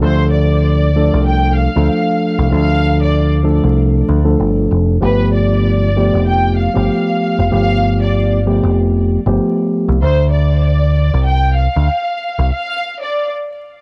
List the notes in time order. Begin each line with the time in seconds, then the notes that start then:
0.01 D2 F3 A3 D4 A4 C5
0.31 D5
0.95 F3 A3 D4 A4
1.14 C2
1.26 G5
1.56 F5
1.76 D2 F3 A3 D4 A4
2.39 C2
2.51 D2 F3 A3 D4 A4 F5
3.02 D5
3.44 F3 A3 D4 A4
3.64 C2
4.09 D2
4.24 F3 A3 D4 A4
4.40 G1
4.71 F1
5.01 G1 F3 A3 B3 G4 B4
5.33 D5
5.96 F3 A3 B3 G4
6.14 F1
6.27 G5
6.58 F5
6.74 G1 F3 A3 B3 G4
7.38 F1
7.50 G1 F3 A3 B3 G4 F5
8.01 D5
8.46 F3 A3 B3 G4
8.63 F1
9.26 G1 F3 A3 B3 G4
9.89 C2
10.02 D2 C5
10.31 D5
11.14 C2
11.26 G5
11.56 F5
11.76 D2
12.39 C2
12.52 F5
13.02 D5